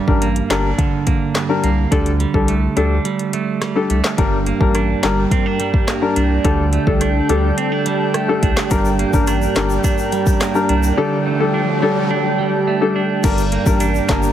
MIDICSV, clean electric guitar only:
0, 0, Header, 1, 2, 480
1, 0, Start_track
1, 0, Key_signature, -2, "minor"
1, 0, Tempo, 566038
1, 1626, Time_signature, 4, 2, 24, 8
1, 12148, End_track
2, 0, Start_track
2, 0, Title_t, "Clean electric guitar"
2, 0, Program_c, 0, 27
2, 0, Note_on_c, 0, 43, 84
2, 0, Note_on_c, 0, 50, 84
2, 0, Note_on_c, 0, 55, 63
2, 185, Note_on_c, 0, 58, 64
2, 426, Note_on_c, 0, 62, 66
2, 662, Note_off_c, 0, 50, 0
2, 666, Note_on_c, 0, 50, 74
2, 896, Note_off_c, 0, 58, 0
2, 906, Note_on_c, 0, 58, 63
2, 1142, Note_off_c, 0, 55, 0
2, 1145, Note_on_c, 0, 55, 61
2, 1376, Note_off_c, 0, 58, 0
2, 1386, Note_on_c, 0, 58, 60
2, 1623, Note_off_c, 0, 50, 0
2, 1626, Note_off_c, 0, 43, 0
2, 1627, Note_on_c, 0, 50, 86
2, 1674, Note_off_c, 0, 58, 0
2, 1864, Note_off_c, 0, 55, 0
2, 1867, Note_on_c, 0, 55, 62
2, 2107, Note_on_c, 0, 57, 61
2, 2344, Note_off_c, 0, 62, 0
2, 2348, Note_on_c, 0, 62, 66
2, 2583, Note_off_c, 0, 55, 0
2, 2587, Note_on_c, 0, 55, 71
2, 2817, Note_off_c, 0, 57, 0
2, 2827, Note_on_c, 0, 57, 61
2, 3064, Note_off_c, 0, 55, 0
2, 3067, Note_on_c, 0, 55, 60
2, 3297, Note_off_c, 0, 57, 0
2, 3307, Note_on_c, 0, 57, 56
2, 3547, Note_on_c, 0, 43, 86
2, 3595, Note_off_c, 0, 57, 0
2, 3787, Note_on_c, 0, 58, 61
2, 4024, Note_off_c, 0, 62, 0
2, 4028, Note_on_c, 0, 62, 71
2, 4264, Note_off_c, 0, 55, 0
2, 4268, Note_on_c, 0, 55, 63
2, 4504, Note_off_c, 0, 62, 0
2, 4508, Note_on_c, 0, 60, 72
2, 4533, Note_off_c, 0, 50, 0
2, 4628, Note_off_c, 0, 60, 0
2, 4628, Note_on_c, 0, 62, 60
2, 4744, Note_off_c, 0, 55, 0
2, 4748, Note_on_c, 0, 55, 61
2, 4977, Note_off_c, 0, 58, 0
2, 4987, Note_on_c, 0, 58, 62
2, 5215, Note_off_c, 0, 62, 0
2, 5226, Note_on_c, 0, 62, 66
2, 5465, Note_on_c, 0, 50, 86
2, 5467, Note_off_c, 0, 43, 0
2, 5515, Note_off_c, 0, 58, 0
2, 5706, Note_on_c, 0, 57, 59
2, 5731, Note_off_c, 0, 55, 0
2, 5941, Note_off_c, 0, 62, 0
2, 5945, Note_on_c, 0, 62, 70
2, 6186, Note_on_c, 0, 55, 64
2, 6421, Note_off_c, 0, 62, 0
2, 6424, Note_on_c, 0, 60, 72
2, 6545, Note_off_c, 0, 60, 0
2, 6545, Note_on_c, 0, 62, 60
2, 6662, Note_off_c, 0, 55, 0
2, 6665, Note_on_c, 0, 55, 61
2, 6895, Note_off_c, 0, 57, 0
2, 6905, Note_on_c, 0, 57, 60
2, 7135, Note_off_c, 0, 62, 0
2, 7145, Note_on_c, 0, 62, 67
2, 7385, Note_on_c, 0, 43, 84
2, 7434, Note_off_c, 0, 57, 0
2, 7626, Note_on_c, 0, 58, 64
2, 7861, Note_off_c, 0, 62, 0
2, 7865, Note_on_c, 0, 62, 71
2, 8102, Note_off_c, 0, 55, 0
2, 8105, Note_on_c, 0, 55, 66
2, 8342, Note_off_c, 0, 62, 0
2, 8346, Note_on_c, 0, 62, 72
2, 8433, Note_off_c, 0, 50, 0
2, 8582, Note_off_c, 0, 55, 0
2, 8585, Note_on_c, 0, 55, 62
2, 8816, Note_off_c, 0, 58, 0
2, 8826, Note_on_c, 0, 58, 62
2, 9063, Note_off_c, 0, 62, 0
2, 9067, Note_on_c, 0, 62, 69
2, 9306, Note_off_c, 0, 43, 0
2, 9306, Note_on_c, 0, 50, 86
2, 9354, Note_off_c, 0, 58, 0
2, 9546, Note_on_c, 0, 57, 61
2, 9571, Note_off_c, 0, 55, 0
2, 9782, Note_off_c, 0, 62, 0
2, 9786, Note_on_c, 0, 62, 71
2, 10026, Note_on_c, 0, 55, 63
2, 10263, Note_off_c, 0, 62, 0
2, 10266, Note_on_c, 0, 62, 74
2, 10503, Note_off_c, 0, 55, 0
2, 10507, Note_on_c, 0, 55, 64
2, 10737, Note_off_c, 0, 57, 0
2, 10747, Note_on_c, 0, 57, 67
2, 10984, Note_off_c, 0, 62, 0
2, 10987, Note_on_c, 0, 62, 67
2, 11227, Note_on_c, 0, 43, 84
2, 11275, Note_off_c, 0, 57, 0
2, 11468, Note_on_c, 0, 58, 59
2, 11703, Note_off_c, 0, 62, 0
2, 11707, Note_on_c, 0, 62, 75
2, 11937, Note_off_c, 0, 58, 0
2, 11947, Note_on_c, 0, 58, 62
2, 12148, Note_off_c, 0, 43, 0
2, 12148, Note_off_c, 0, 50, 0
2, 12148, Note_off_c, 0, 55, 0
2, 12148, Note_off_c, 0, 58, 0
2, 12148, Note_off_c, 0, 62, 0
2, 12148, End_track
0, 0, End_of_file